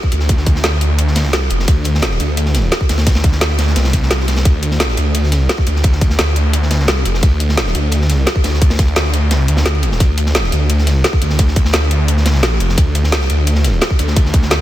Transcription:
0.03 kick
0.12 detuned saw bass D2, closed hi-hat, ride
0.20 snare
0.29 kick, closed hi-hat, ride
0.37 snare
0.46 kick, closed hi-hat, ride
0.55 snare
0.63 detuned saw bass D2, snare, closed hi-hat, ride
0.72 snare
0.81 closed hi-hat, ride
0.99 closed hi-hat, ride
1.08 snare
1.15 snare, closed hi-hat, ride
1.24 detuned saw bass C#2, snare
1.33 snare, closed hi-hat, ride
1.50 detuned saw bass F1, closed hi-hat, ride
1.60 snare
1.68 detuned saw bass D2, kick, closed hi-hat, ride
1.84 closed hi-hat, ride
1.95 snare
2.02 snare, closed hi-hat, ride
2.11 snare
2.20 detuned saw bass D2, closed hi-hat, ride
2.37 closed hi-hat, ride
2.46 snare
2.55 snare, closed hi-hat, ride
2.72 snare, closed hi-hat, ride
2.81 kick
2.89 detuned saw bass D2, snare, closed hi-hat, ride
2.98 snare, ride
3.07 kick, snare, closed hi-hat, ride
3.15 snare, ride
3.24 kick, closed hi-hat, ride
3.32 snare
3.41 detuned saw bass D2, snare, closed hi-hat, ride
3.50 snare
3.58 snare, closed hi-hat, ride
3.67 snare
3.76 detuned saw bass C2, snare, closed hi-hat, ride
3.85 snare, ride
3.93 kick, closed hi-hat, ride
4.03 snare
4.10 snare, closed hi-hat, ride
4.20 snare
4.28 snare, closed hi-hat, ride
4.36 snare, ride
4.45 detuned saw bass D2, kick, closed hi-hat, ride
4.63 closed hi-hat, ride
4.71 snare
4.80 snare, closed hi-hat, ride
4.89 snare
4.97 detuned saw bass D2, closed hi-hat, ride
5.14 closed hi-hat, ride
5.24 snare
5.32 snare, closed hi-hat, ride
5.49 snare, closed hi-hat, ride
5.58 kick
5.67 detuned saw bass D2, closed hi-hat, ride
5.76 snare
5.83 kick, closed hi-hat, ride
5.92 snare
6.01 kick, closed hi-hat, ride
6.10 snare
6.18 detuned saw bass D2, snare, closed hi-hat, ride
6.27 snare
6.36 closed hi-hat, ride
6.53 closed hi-hat, ride
6.62 snare
6.71 snare, closed hi-hat, ride
6.79 detuned saw bass C#2, snare
6.88 snare, closed hi-hat, ride
7.05 detuned saw bass F1, closed hi-hat, ride
7.14 snare
7.23 detuned saw bass D2, kick, closed hi-hat, ride
7.40 closed hi-hat, ride
7.49 snare
7.57 snare, closed hi-hat, ride
7.66 snare
7.75 detuned saw bass D2, closed hi-hat, ride
7.92 closed hi-hat, ride
8.02 snare
8.09 snare, closed hi-hat, ride
8.27 snare, closed hi-hat, ride
8.36 kick
8.44 detuned saw bass D2, snare, closed hi-hat, ride
8.54 snare
8.62 kick, closed hi-hat, ride
8.70 snare, ride
8.78 kick, snare, closed hi-hat
8.88 ride
8.96 detuned saw bass D2, snare, closed hi-hat, ride
9.05 snare
9.13 closed hi-hat, ride
9.31 snare, closed hi-hat, ride
9.48 detuned saw bass D2, closed hi-hat, ride
9.57 snare, ride
9.66 snare, closed hi-hat
9.75 ride
9.82 closed hi-hat, ride
9.92 snare
10.00 detuned saw bass D2, kick, closed hi-hat, ride
10.18 closed hi-hat, ride
10.26 snare
10.35 snare, closed hi-hat, ride
10.44 snare
10.52 detuned saw bass D2, closed hi-hat, ride
10.70 closed hi-hat, ride
10.79 snare
10.87 snare, closed hi-hat, ride
11.04 snare, closed hi-hat, ride
11.13 kick
11.22 detuned saw bass D2, closed hi-hat, ride
11.30 snare
11.39 kick, closed hi-hat, ride
11.48 snare
11.56 kick, closed hi-hat, ride
11.65 snare
11.73 detuned saw bass D2, snare, closed hi-hat, ride
11.82 snare
11.91 closed hi-hat, ride
12.08 closed hi-hat, ride
12.17 snare
12.26 snare, closed hi-hat, ride
12.34 snare
12.43 snare, closed hi-hat, ride
12.60 detuned saw bass F1, closed hi-hat, ride
12.69 snare
12.78 detuned saw bass D2, kick, closed hi-hat, ride
12.95 closed hi-hat, ride
13.04 snare
13.12 snare, closed hi-hat, ride
13.21 snare
13.30 detuned saw bass D2, closed hi-hat, ride
13.47 closed hi-hat, ride
13.55 snare
13.64 snare, closed hi-hat, ride
13.81 snare, closed hi-hat, ride
13.90 kick
13.99 detuned saw bass D2, closed hi-hat, ride
14.07 snare
14.16 kick, closed hi-hat, ride
14.26 snare
14.34 kick, closed hi-hat, ride
14.42 snare
14.51 detuned saw bass D2, snare, closed hi-hat, ride

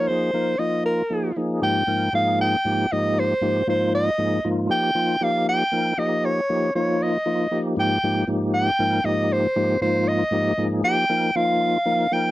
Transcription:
0.07 tonewheel organ F3 A#3 D#4 G#4, soprano saxophone C5
0.34 tonewheel organ F3 A#3 D#4 A#4
0.59 tonewheel organ F3 A#3 D#4 F4, soprano saxophone D#5
0.86 soprano saxophone A#4
1.10 tonewheel organ F3 A#3 D#4 G#4
1.36 tonewheel organ F3 A#3 D#4 G#4
1.62 tonewheel organ G#2 F3 A#3 D#4 G4, soprano saxophone G5
1.87 tonewheel organ G#2 F3 A#3 D#4 A#4
2.12 tonewheel organ G#2 F3 A#3 D#4 G#4, soprano saxophone F5
2.41 soprano saxophone G5
2.65 tonewheel organ G#2 F3 A#3 D#4 G4
2.92 tonewheel organ G#2 F3 A#3 D#4 G4, soprano saxophone D#5
3.19 soprano saxophone C5
3.41 tonewheel organ G#2 F3 A#3 D#4 G4
3.67 tonewheel organ G#2 F3 A#3 D#4 F4, soprano saxophone C5
3.94 soprano saxophone D#5
4.18 tonewheel organ G#2 F3 A#3 D#4 G#4
4.45 tonewheel organ G#2 F3 A#3 D#4 F4
4.69 tonewheel organ F3 A#3 D#4 G4, soprano saxophone G5
4.95 tonewheel organ F3 A#3 D#4 F4
5.21 tonewheel organ F3 A#3 D#4 G4, soprano saxophone F5
5.49 soprano saxophone G5
5.72 tonewheel organ F3 A#3 D#4 A#4
5.98 tonewheel organ F3 A#3 D#4 G4, soprano saxophone D#5
6.25 soprano saxophone C#5
6.49 tonewheel organ F3 A#3 D#4 G4
6.75 tonewheel organ F3 A#3 D#4 F4, soprano saxophone C#5
7.02 soprano saxophone D#5
7.26 tonewheel organ F3 A#3 D#4 F4
7.51 tonewheel organ F3 A#3 D#4 G4
7.76 tonewheel organ G#2 F3 A#3 D#4 G4, soprano saxophone G5
8.03 tonewheel organ G#2 F3 A#3 D#4 G4
8.27 tonewheel organ G#2 F3 A#3 D#4 G4
8.54 soprano saxophone G5
8.79 tonewheel organ G#2 F3 A#3 D#4 A#4
9.04 tonewheel organ G#2 F3 A#3 D#4 G4, soprano saxophone D#5
9.32 soprano saxophone C5
9.56 tonewheel organ G#2 F3 A#3 D#4 G4
9.81 tonewheel organ G#2 F3 A#3 D#4 F4, soprano saxophone C5
10.08 soprano saxophone D#5
10.31 tonewheel organ G#2 F3 A#3 D#4 G4
10.57 tonewheel organ G#2 F3 A#3 D#4 G#4
10.83 tonewheel organ F3 A#3 D#4 G4, soprano saxophone G5
11.09 tonewheel organ F3 A#3 D#4 A#4
11.35 tonewheel organ F3 A#3 D#4 F4, soprano saxophone F5
11.86 tonewheel organ F3 A#3 D#4 A#4
12.11 tonewheel organ F3 A#3 D#4 A#4, soprano saxophone G5

